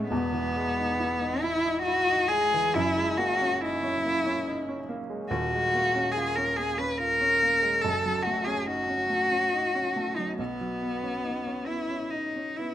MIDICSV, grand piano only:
0, 0, Header, 1, 2, 480
1, 0, Start_track
1, 0, Tempo, 873362
1, 61, Time_signature, 3, 2, 24, 8
1, 1980, Tempo, 843882
1, 4860, Tempo, 857143
1, 6300, Tempo, 892857
1, 7110, End_track
2, 0, Start_track
2, 0, Title_t, "Grand piano"
2, 0, Program_c, 0, 0
2, 0, Control_c, 0, 64, 127
2, 0, Note_on_c, 0, 45, 73
2, 0, Note_on_c, 0, 56, 65
2, 0, Note_on_c, 0, 61, 60
2, 58, Note_on_c, 0, 28, 78
2, 61, Note_off_c, 0, 56, 0
2, 63, Note_on_c, 0, 40, 81
2, 71, Control_c, 0, 64, 0
2, 73, Note_off_c, 0, 45, 0
2, 74, Note_off_c, 0, 61, 0
2, 162, Control_c, 0, 64, 127
2, 178, Note_on_c, 0, 52, 54
2, 311, Note_on_c, 0, 56, 60
2, 371, Note_off_c, 0, 52, 0
2, 435, Note_on_c, 0, 63, 61
2, 498, Note_off_c, 0, 56, 0
2, 547, Note_on_c, 0, 64, 66
2, 619, Note_off_c, 0, 63, 0
2, 663, Note_on_c, 0, 63, 64
2, 735, Note_off_c, 0, 64, 0
2, 787, Note_on_c, 0, 64, 64
2, 852, Note_off_c, 0, 63, 0
2, 908, Note_on_c, 0, 63, 61
2, 974, Note_off_c, 0, 64, 0
2, 1027, Note_on_c, 0, 64, 69
2, 1095, Note_off_c, 0, 63, 0
2, 1152, Note_on_c, 0, 63, 62
2, 1217, Note_off_c, 0, 64, 0
2, 1274, Note_on_c, 0, 56, 64
2, 1342, Note_off_c, 0, 63, 0
2, 1396, Note_on_c, 0, 52, 58
2, 1464, Note_off_c, 0, 56, 0
2, 1483, Note_off_c, 0, 28, 0
2, 1485, Note_off_c, 0, 40, 0
2, 1510, Note_on_c, 0, 30, 71
2, 1513, Note_off_c, 0, 52, 0
2, 1516, Control_c, 0, 64, 0
2, 1518, Note_on_c, 0, 42, 80
2, 1621, Control_c, 0, 64, 127
2, 1635, Note_on_c, 0, 56, 60
2, 1749, Note_on_c, 0, 58, 62
2, 1821, Note_off_c, 0, 56, 0
2, 1874, Note_on_c, 0, 61, 64
2, 1936, Note_off_c, 0, 58, 0
2, 1993, Note_on_c, 0, 63, 65
2, 2058, Note_off_c, 0, 61, 0
2, 2111, Note_on_c, 0, 61, 65
2, 2179, Note_off_c, 0, 63, 0
2, 2235, Note_on_c, 0, 58, 60
2, 2297, Note_off_c, 0, 61, 0
2, 2351, Note_on_c, 0, 61, 58
2, 2418, Note_off_c, 0, 58, 0
2, 2477, Note_on_c, 0, 63, 65
2, 2535, Note_off_c, 0, 61, 0
2, 2597, Note_on_c, 0, 61, 61
2, 2658, Note_off_c, 0, 63, 0
2, 2711, Note_on_c, 0, 58, 65
2, 2778, Note_off_c, 0, 61, 0
2, 2830, Note_on_c, 0, 56, 60
2, 2896, Note_off_c, 0, 58, 0
2, 2915, Note_off_c, 0, 30, 0
2, 2920, Note_off_c, 0, 42, 0
2, 2944, Note_off_c, 0, 56, 0
2, 2946, Control_c, 0, 64, 0
2, 2946, Note_on_c, 0, 27, 75
2, 2948, Note_on_c, 0, 39, 75
2, 3031, Control_c, 0, 64, 127
2, 3076, Note_on_c, 0, 56, 58
2, 3197, Note_on_c, 0, 58, 59
2, 3261, Note_off_c, 0, 56, 0
2, 3316, Note_on_c, 0, 61, 65
2, 3382, Note_off_c, 0, 58, 0
2, 3440, Note_on_c, 0, 65, 62
2, 3503, Note_off_c, 0, 61, 0
2, 3560, Note_on_c, 0, 61, 61
2, 3625, Note_off_c, 0, 65, 0
2, 3677, Note_on_c, 0, 58, 52
2, 3746, Note_off_c, 0, 61, 0
2, 3792, Note_on_c, 0, 61, 56
2, 3865, Note_off_c, 0, 58, 0
2, 3908, Note_on_c, 0, 65, 59
2, 3983, Note_off_c, 0, 61, 0
2, 4031, Note_on_c, 0, 61, 60
2, 4100, Note_off_c, 0, 65, 0
2, 4156, Note_on_c, 0, 58, 56
2, 4220, Note_off_c, 0, 61, 0
2, 4266, Note_on_c, 0, 56, 59
2, 4342, Note_off_c, 0, 58, 0
2, 4367, Note_off_c, 0, 27, 0
2, 4369, Note_off_c, 0, 39, 0
2, 4385, Note_off_c, 0, 56, 0
2, 4389, Note_on_c, 0, 30, 65
2, 4391, Note_on_c, 0, 42, 71
2, 4395, Control_c, 0, 64, 0
2, 4469, Control_c, 0, 64, 127
2, 4513, Note_on_c, 0, 54, 51
2, 4634, Note_on_c, 0, 57, 55
2, 4699, Note_off_c, 0, 54, 0
2, 4748, Note_on_c, 0, 61, 59
2, 4819, Note_off_c, 0, 57, 0
2, 4859, Note_on_c, 0, 63, 58
2, 4934, Note_off_c, 0, 61, 0
2, 4985, Note_on_c, 0, 61, 55
2, 5049, Note_off_c, 0, 63, 0
2, 5102, Note_on_c, 0, 57, 49
2, 5173, Note_off_c, 0, 61, 0
2, 5222, Note_on_c, 0, 61, 48
2, 5293, Note_off_c, 0, 57, 0
2, 5345, Note_on_c, 0, 63, 60
2, 5414, Note_off_c, 0, 61, 0
2, 5466, Note_on_c, 0, 61, 53
2, 5536, Note_off_c, 0, 63, 0
2, 5586, Note_on_c, 0, 57, 52
2, 5657, Note_off_c, 0, 61, 0
2, 5710, Note_on_c, 0, 54, 52
2, 5777, Note_off_c, 0, 57, 0
2, 5802, Note_off_c, 0, 30, 0
2, 5803, Note_off_c, 0, 42, 0
2, 5825, Note_on_c, 0, 35, 67
2, 5827, Note_off_c, 0, 54, 0
2, 5833, Control_c, 0, 64, 0
2, 5918, Control_c, 0, 64, 127
2, 5948, Note_on_c, 0, 54, 47
2, 6062, Note_on_c, 0, 59, 49
2, 6137, Note_off_c, 0, 54, 0
2, 6185, Note_on_c, 0, 61, 49
2, 6254, Note_off_c, 0, 59, 0
2, 6301, Note_on_c, 0, 63, 54
2, 6372, Note_off_c, 0, 61, 0
2, 6424, Note_on_c, 0, 61, 49
2, 6486, Note_off_c, 0, 63, 0
2, 6535, Note_on_c, 0, 59, 42
2, 6607, Note_off_c, 0, 61, 0
2, 6656, Note_on_c, 0, 61, 44
2, 6724, Note_off_c, 0, 59, 0
2, 6780, Note_on_c, 0, 63, 44
2, 6846, Note_off_c, 0, 61, 0
2, 6904, Note_on_c, 0, 61, 44
2, 6971, Note_off_c, 0, 63, 0
2, 7027, Note_on_c, 0, 59, 49
2, 7098, Note_off_c, 0, 61, 0
2, 7110, Note_off_c, 0, 35, 0
2, 7110, Note_off_c, 0, 59, 0
2, 7110, End_track
0, 0, End_of_file